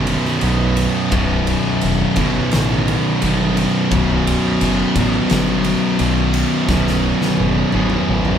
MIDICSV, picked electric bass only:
0, 0, Header, 1, 2, 480
1, 0, Start_track
1, 0, Tempo, 696864
1, 776, Time_signature, 4, 2, 24, 8
1, 5775, End_track
2, 0, Start_track
2, 0, Title_t, "Picked electric bass"
2, 0, Program_c, 0, 34
2, 0, Note_on_c, 0, 31, 109
2, 107, Note_off_c, 0, 31, 0
2, 293, Note_on_c, 0, 35, 102
2, 589, Note_off_c, 0, 35, 0
2, 774, Note_on_c, 0, 23, 89
2, 1069, Note_off_c, 0, 23, 0
2, 1260, Note_on_c, 0, 28, 103
2, 1406, Note_off_c, 0, 28, 0
2, 1494, Note_on_c, 0, 31, 93
2, 1642, Note_off_c, 0, 31, 0
2, 1744, Note_on_c, 0, 33, 102
2, 2036, Note_off_c, 0, 33, 0
2, 2221, Note_on_c, 0, 31, 102
2, 2514, Note_off_c, 0, 31, 0
2, 2700, Note_on_c, 0, 23, 102
2, 2993, Note_off_c, 0, 23, 0
2, 3176, Note_on_c, 0, 30, 101
2, 3323, Note_off_c, 0, 30, 0
2, 3416, Note_on_c, 0, 33, 97
2, 3563, Note_off_c, 0, 33, 0
2, 3656, Note_on_c, 0, 31, 108
2, 3950, Note_off_c, 0, 31, 0
2, 4131, Note_on_c, 0, 35, 92
2, 4427, Note_off_c, 0, 35, 0
2, 4605, Note_on_c, 0, 23, 97
2, 4902, Note_off_c, 0, 23, 0
2, 5096, Note_on_c, 0, 28, 94
2, 5242, Note_off_c, 0, 28, 0
2, 5332, Note_on_c, 0, 31, 101
2, 5479, Note_off_c, 0, 31, 0
2, 5572, Note_on_c, 0, 33, 105
2, 5775, Note_off_c, 0, 33, 0
2, 5775, End_track
0, 0, End_of_file